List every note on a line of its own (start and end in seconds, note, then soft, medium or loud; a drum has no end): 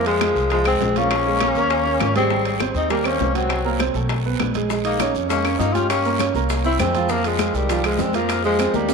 0.00 0.30 F2 medium
0.00 0.16 F3 medium
0.00 0.16 F4 medium
0.06 0.48 F3 medium
0.06 0.48 G#3 medium
0.06 high bongo soft
0.06 high conga soft
0.06 high timbale medium
0.21 0.46 G#3 medium
0.21 0.46 G#4 medium
0.21 high bongo medium
0.21 high conga medium
0.21 high timbale loud
0.21 low timbale medium
0.21 short guiro medium
0.21 claves medium
0.36 0.78 C2 medium
0.36 high bongo soft
0.36 short guiro medium
0.50 0.64 F3 medium
0.50 0.66 F3 medium
0.50 0.65 G#3 loud
0.50 0.64 F4 medium
0.50 high bongo medium
0.50 high conga soft
0.50 high timbale medium
0.50 long guiro medium
0.65 0.90 G#3 medium
0.65 1.00 G#3 medium
0.65 0.99 C4 medium
0.65 0.91 G#4 medium
0.65 high bongo soft
0.65 high conga soft
0.65 high timbale medium
0.65 claves medium
0.80 1.50 A#1 medium
0.80 high bongo soft
0.80 low bongo medium
0.80 high conga medium
0.80 low timbale medium
0.80 short guiro medium
0.96 2.17 A#3 medium
0.96 2.16 C#4 loud
0.96 1.21 F4 medium
0.96 1.21 F5 medium
0.96 high conga medium
0.96 high timbale medium
0.96 short guiro medium
1.11 high bongo medium
1.11 high conga soft
1.11 high timbale medium
1.11 long guiro medium
1.11 claves medium
1.26 1.38 G#3 medium
1.26 1.38 G#4 medium
1.26 high bongo soft
1.40 1.54 A#3 medium
1.40 1.54 A#4 medium
1.40 high bongo medium
1.40 high conga medium
1.40 high timbale loud
1.40 low timbale medium
1.40 short guiro medium
1.40 claves medium
1.55 1.97 D#2 medium
1.55 1.81 A#3 medium
1.55 1.81 A#4 medium
1.55 high bongo soft
1.55 high conga soft
1.55 short guiro medium
1.70 high bongo medium
1.70 high conga soft
1.70 high timbale medium
1.70 long guiro medium
1.86 2.10 C#4 medium
1.86 2.10 C#5 medium
1.86 high bongo soft
1.86 high conga soft
2.00 2.69 G#1 medium
2.00 high bongo soft
2.00 low bongo medium
2.00 high conga medium
2.00 high timbale medium
2.00 low timbale medium
2.00 short guiro medium
2.00 claves medium
2.15 2.28 G3 medium
2.15 2.58 G#3 medium
2.15 2.58 C4 medium
2.15 2.28 G4 medium
2.15 high conga medium
2.15 high timbale medium
2.15 short guiro medium
2.30 2.55 G3 medium
2.30 2.55 G4 medium
2.30 high bongo medium
2.30 long guiro medium
2.45 high bongo soft
2.45 high conga soft
2.45 high timbale medium
2.60 2.85 C4 medium
2.60 2.86 C5 medium
2.60 high bongo medium
2.60 high conga medium
2.60 high timbale medium
2.60 low timbale medium
2.60 short guiro medium
2.60 claves medium
2.74 3.17 D#2 medium
2.74 2.90 C4 medium
2.74 2.90 D#4 medium
2.74 high bongo soft
2.74 high conga soft
2.74 short guiro medium
2.90 3.02 G3 medium
2.90 3.08 G3 medium
2.90 3.08 A#3 medium
2.90 3.02 G4 medium
2.90 high bongo medium
2.90 high timbale medium
2.90 long guiro medium
3.04 3.36 A#3 medium
3.04 3.30 C4 medium
3.04 3.36 C#4 medium
3.04 3.30 C5 medium
3.04 high bongo soft
3.04 high conga soft
3.04 high timbale medium
3.04 claves medium
3.20 3.89 C2 medium
3.20 high bongo soft
3.20 low bongo medium
3.20 high conga medium
3.20 low timbale medium
3.20 short guiro medium
3.35 3.92 F#3 medium
3.35 3.92 C4 medium
3.35 3.59 F#4 medium
3.35 3.60 F#5 medium
3.35 high conga medium
3.35 high timbale medium
3.35 short guiro medium
3.49 high bongo medium
3.49 high timbale medium
3.49 long guiro medium
3.49 claves medium
3.65 3.77 A#3 medium
3.65 3.77 A#4 medium
3.65 high bongo soft
3.65 high conga soft
3.80 3.93 C4 medium
3.80 3.93 C5 medium
3.80 high bongo medium
3.80 high conga medium
3.80 high timbale loud
3.80 low timbale medium
3.80 short guiro medium
3.80 claves medium
3.94 4.36 B1 medium
3.94 4.20 A3 medium
3.94 4.20 A4 medium
3.94 high bongo soft
3.94 high conga soft
3.94 short guiro medium
4.09 high bongo medium
4.09 high conga soft
4.09 high timbale medium
4.09 long guiro medium
4.25 4.50 B3 medium
4.25 4.50 B4 medium
4.25 high bongo soft
4.25 high conga soft
4.39 5.09 A#1 medium
4.39 high bongo soft
4.39 low bongo medium
4.39 high conga medium
4.39 high timbale medium
4.39 low timbale medium
4.39 short guiro medium
4.39 claves medium
4.54 4.67 G#3 medium
4.54 4.68 G#4 medium
4.54 high conga medium
4.54 high timbale medium
4.54 short guiro medium
4.70 4.95 G#3 medium
4.70 4.95 G#4 medium
4.70 high bongo medium
4.70 long guiro medium
4.70 maracas medium
4.85 5.13 A#3 medium
4.85 5.13 D#4 medium
4.85 high bongo soft
4.85 high conga soft
4.85 high timbale medium
4.85 maracas soft
5.00 5.25 C#4 medium
5.00 5.25 C#5 medium
5.00 high bongo medium
5.00 high conga medium
5.00 high timbale loud
5.00 low timbale medium
5.00 short guiro medium
5.00 claves medium
5.00 maracas medium
5.14 5.56 F2 medium
5.14 high bongo soft
5.14 high conga soft
5.14 short guiro medium
5.14 maracas soft
5.29 5.42 G#3 medium
5.29 5.58 A#3 medium
5.29 5.57 C#4 medium
5.29 5.42 G#4 medium
5.29 high bongo medium
5.29 high conga soft
5.29 high timbale medium
5.29 long guiro medium
5.29 maracas medium
5.44 5.69 C#4 medium
5.44 5.69 C#5 medium
5.44 high bongo soft
5.44 high conga soft
5.44 high timbale medium
5.44 claves medium
5.44 maracas soft
5.58 6.29 G2 medium
5.58 5.77 A#3 medium
5.58 5.75 D#4 medium
5.58 high bongo soft
5.58 low bongo medium
5.58 high conga medium
5.58 low timbale medium
5.58 short guiro medium
5.58 maracas medium
5.73 5.89 C#4 medium
5.73 5.88 F4 loud
5.73 5.99 G4 medium
5.73 5.99 G5 medium
5.73 high conga medium
5.73 high timbale medium
5.73 short guiro medium
5.73 maracas soft
5.89 6.31 A#3 medium
5.89 6.31 C#4 medium
5.89 high bongo medium
5.89 high conga soft
5.89 high timbale medium
5.89 long guiro medium
5.89 claves medium
5.89 maracas medium
6.05 6.17 A#3 medium
6.05 6.17 A#4 medium
6.05 high bongo soft
6.05 high conga soft
6.05 maracas soft
6.19 6.32 C#4 medium
6.19 6.32 C#5 medium
6.19 high bongo medium
6.19 high conga medium
6.19 high timbale loud
6.19 low timbale medium
6.19 short guiro medium
6.19 claves medium
6.19 maracas medium
6.34 6.76 C2 medium
6.34 6.60 A#3 medium
6.34 6.60 A#4 medium
6.34 high bongo soft
6.34 high conga soft
6.34 short guiro medium
6.34 maracas soft
6.49 high bongo medium
6.49 high conga soft
6.49 high timbale medium
6.49 long guiro medium
6.49 maracas medium
6.64 6.89 C4 medium
6.64 6.79 C4 medium
6.64 6.79 E4 loud
6.64 6.89 C5 medium
6.64 high bongo soft
6.64 high conga soft
6.64 maracas soft
6.79 7.49 F2 medium
6.79 7.11 G#3 medium
6.79 7.13 C4 loud
6.79 high bongo soft
6.79 low bongo medium
6.79 high conga medium
6.79 high timbale medium
6.79 low timbale medium
6.79 short guiro medium
6.79 claves medium
6.79 maracas medium
6.95 7.07 F3 medium
6.95 7.07 F4 medium
6.95 high conga medium
6.95 high timbale medium
6.95 short guiro medium
6.95 maracas soft
7.09 7.25 F3 medium
7.09 7.35 F3 medium
7.09 7.27 A#3 loud
7.09 7.35 F4 medium
7.09 high bongo medium
7.09 high conga soft
7.09 long guiro medium
7.09 maracas medium
7.24 7.56 F3 medium
7.24 7.57 G#3 medium
7.24 high bongo soft
7.24 high conga soft
7.24 high timbale medium
7.24 maracas soft
7.39 7.64 G#3 medium
7.39 7.64 G#4 medium
7.39 high bongo medium
7.39 high conga medium
7.39 high timbale loud
7.39 low timbale medium
7.39 short guiro medium
7.39 claves medium
7.39 maracas medium
7.54 7.96 C2 medium
7.54 7.86 D#3 medium
7.54 7.87 G3 medium
7.54 high bongo soft
7.54 high conga soft
7.54 short guiro medium
7.54 maracas soft
7.69 7.82 F3 medium
7.69 7.82 F4 medium
7.69 high bongo medium
7.69 high conga soft
7.69 high timbale medium
7.69 long guiro medium
7.69 maracas medium
7.83 8.02 F3 medium
7.83 8.09 G#3 medium
7.83 8.02 G#3 medium
7.83 8.09 G#4 medium
7.83 high bongo soft
7.83 high conga soft
7.83 high timbale medium
7.83 claves medium
7.83 maracas soft
7.98 8.68 F2 medium
7.98 8.16 G#3 medium
7.98 8.17 C4 medium
7.98 high bongo soft
7.98 low bongo medium
7.98 high conga medium
7.98 low timbale medium
7.98 short guiro medium
7.98 maracas medium
8.13 8.44 F3 medium
8.13 8.44 A#3 medium
8.13 8.39 F4 medium
8.13 8.39 F5 medium
8.13 high conga medium
8.13 high timbale medium
8.13 short guiro medium
8.13 maracas soft
8.29 high bongo medium
8.29 high conga soft
8.29 high timbale medium
8.29 long guiro medium
8.29 claves medium
8.29 maracas medium
8.44 8.76 F3 medium
8.44 8.57 G#3 medium
8.44 8.77 G#3 medium
8.44 8.57 G#4 medium
8.44 high bongo soft
8.44 high conga soft
8.44 maracas soft
8.59 8.72 C4 medium
8.59 8.72 C5 medium
8.59 high bongo medium
8.59 high conga medium
8.59 high timbale medium
8.59 low timbale medium
8.59 short guiro medium
8.59 claves medium
8.59 maracas medium
8.74 8.94 D#2 medium
8.74 8.94 D#3 medium
8.74 8.94 G3 medium
8.74 8.94 A#3 medium
8.74 8.94 A#4 medium
8.74 high bongo soft
8.74 high conga loud
8.74 short guiro medium
8.74 maracas soft
8.89 high bongo medium
8.89 high timbale medium
8.89 long guiro medium
8.89 maracas medium